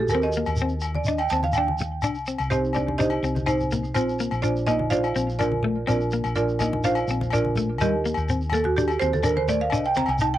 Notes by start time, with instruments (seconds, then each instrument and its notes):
Already playing: fingered electric bass A#1
0.00 marimba A4
0.09 fingered electric bass D#2, marimba A#4, low agogo, shekere
0.15 clean electric guitar C4
0.22 marimba D#5, shekere
0.33 shekere
0.37 clean electric guitar A#3
0.46 fingered electric bass D#2, low agogo, shekere
0.56 shekere
0.62 clean electric guitar C4
0.69 shekere
0.81 low agogo, shekere
0.95 marimba D5, high conga
1.05 clean electric guitar D4, marimba D#5, shekere
1.18 marimba G5, low agogo, shekere
1.29 fingered electric bass D#2, clean electric guitar C4, marimba A5, shekere
1.43 marimba F5, high conga, shekere
1.53 marimba G5, low agogo, shekere
1.58 clean electric guitar D4
1.68 high conga
1.78 muted clean electric guitar stroke, low conga, shekere
2.02 fingered electric bass C2, clean electric guitar D4, low agogo, shekere
2.14 shekere
2.26 clean electric guitar C4, shekere
2.38 fingered electric bass C2, low agogo, shekere
2.50 marimba C4 D#4 G4 C5, clean electric guitar D#4, shekere
2.65 shekere
2.73 clean electric guitar C4, marimba D4 D5, low conga, low agogo, shekere
2.88 high conga
2.98 clean electric guitar D4, marimba D#4 G4 C5 D#5, high conga, shekere
3.10 low agogo
3.23 fingered electric bass C2, clean electric guitar C4, shekere
3.36 high conga, shekere
3.46 marimba C4 D#4 C5, clean electric guitar D#4, low agogo, shekere
3.60 low conga, shekere
3.72 clean electric guitar A#3, low conga, shekere
3.84 shekere
3.94 fingered electric bass A#1, marimba C4 F4 C5, clean electric guitar C4, low agogo, shekere
4.09 shekere
4.19 clean electric guitar A#3, shekere
4.31 fingered electric bass A#1, low agogo, shekere
4.42 marimba D4 F4 C5 D5, clean electric guitar D4, shekere
4.57 shekere
4.67 clean electric guitar A#3, marimba D#4 D#5, low conga, low agogo, shekere
4.79 high conga
4.90 clean electric guitar D4, marimba F4 C5 D5 F5, shekere
5.04 low agogo, shekere
5.16 fingered electric bass A#1, clean electric guitar C4, shekere
5.30 shekere
5.39 clean electric guitar D4, marimba F4 A#4 D5, low agogo, shekere
5.52 high conga
5.63 clean electric guitar A3, low conga
5.87 fingered electric bass A#1, clean electric guitar C4, marimba D4 F4 A#4 D5, low agogo, shekere
6.01 shekere
6.11 clean electric guitar A#3, shekere
6.24 fingered electric bass A#1, low agogo, shekere
6.36 marimba D4 F4 A#4 D5, muted clean electric guitar stroke, shekere
6.49 shekere
6.59 clean electric guitar A#3, marimba D#4 D#5, low conga, low agogo, shekere
6.73 high conga
6.84 clean electric guitar D4, marimba F4 C5 D5 F5, shekere
6.95 low agogo, shekere
7.08 fingered electric bass A#1, clean electric guitar C4, shekere
7.21 high conga, shekere
7.30 marimba D4 F4 A#4 D5, clean electric guitar D4, low agogo, shekere
7.45 high conga
7.55 clean electric guitar A3, low conga, shekere
7.78 fingered electric bass D#2, clean electric guitar G3, marimba D#4 G4 A#4 D#5, low agogo, shekere
8.06 clean electric guitar A#3, shekere
8.14 fingered electric bass D#2, low agogo, shekere
8.29 clean electric guitar C4, shekere
8.41 shekere
8.50 marimba A4, low conga, low agogo
8.54 clean electric guitar A#3, shekere
8.64 marimba F#4, high conga
8.76 clean electric guitar D4, marimba G4, shekere
8.88 low agogo, shekere
8.99 fingered electric bass D#2, clean electric guitar C4, marimba C5, shekere
9.13 marimba A4, high conga, shekere
9.23 clean electric guitar D4, marimba A#4, low agogo, shekere
9.37 marimba C5, high conga
9.48 clean electric guitar A3, marimba D5, low conga, shekere
9.61 marimba F5
9.70 fingered electric bass C2, clean electric guitar D4, marimba D#5, low agogo, shekere
9.85 marimba G5, shekere
9.95 clean electric guitar C4, marimba A#5, high conga, shekere
10.06 fingered electric bass C2, marimba G#5, low agogo, shekere
10.19 clean electric guitar D#4, marimba A5, shekere
10.34 marimba G5